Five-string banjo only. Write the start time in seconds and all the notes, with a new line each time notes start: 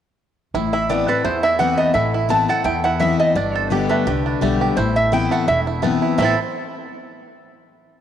0.54 E4
0.74 E4
0.90 A3
1.08 A4
1.25 E4
1.44 E4
1.60 E3
1.79 A3
1.95 E4
2.14 E4
2.30 A3
2.49 A4
2.66 E4
2.85 E4
3.01 E3
3.20 A3
3.36 D4
3.56 A4
3.72 G4
3.91 A3
4.07 G4
4.26 D4
4.42 A3
4.61 G4
4.78 E4
5.12 E4
5.31 A3
5.48 E4
5.67 E4
5.83 A3
6.02 E4
6.18 A3 C4 E4
6.24 A4